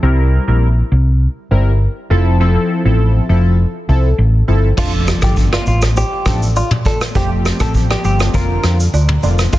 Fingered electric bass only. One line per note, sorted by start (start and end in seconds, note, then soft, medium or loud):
0.03 0.37 C2 loud
0.48 0.81 A#1 medium
0.92 1.26 C2 medium
1.51 1.85 G1 medium
2.10 2.56 F1 loud
2.85 3.19 A1 medium
3.29 3.64 F1 medium
3.89 4.11 C2 medium
4.18 4.41 A1 loud
4.48 4.71 G1 medium
4.78 5.12 F1 loud
5.23 5.56 G1 medium
5.67 6.01 A1 medium
6.26 6.61 A1 medium
7.15 7.50 F1 loud
7.60 7.94 A1 medium
8.04 8.27 G1 medium
8.34 8.57 F1 medium
8.64 8.87 F2 medium
8.93 9.16 D2 medium
9.23 9.46 F1 medium
9.53 9.59 F1 loud